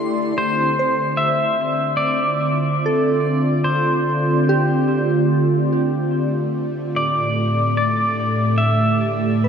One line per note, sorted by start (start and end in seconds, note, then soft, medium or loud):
0.00 0.37 D3 medium
0.00 0.37 A3 medium
0.00 0.39 A3 medium
0.00 0.39 E4 medium
0.00 1.75 G4 medium
0.00 0.61 D5 soft
0.00 9.48 D5 medium
0.00 0.40 C6 medium
0.37 6.95 D3 medium
0.37 9.48 D3 medium
0.37 9.48 A3 medium
0.37 1.22 C5 medium
0.45 9.44 C4 medium
0.79 3.08 C5 medium
1.17 2.03 E5 loud
1.27 6.96 F4 medium
1.97 3.64 D5 medium
2.86 5.14 A4 medium
3.64 5.26 C5 medium
4.49 6.78 G4 medium
6.94 9.48 A2 medium
6.94 7.76 D5 medium
7.08 9.48 A3 medium
7.42 9.48 G4 medium
7.77 8.62 D5 medium
8.58 9.48 E5 medium
9.44 9.48 B4 medium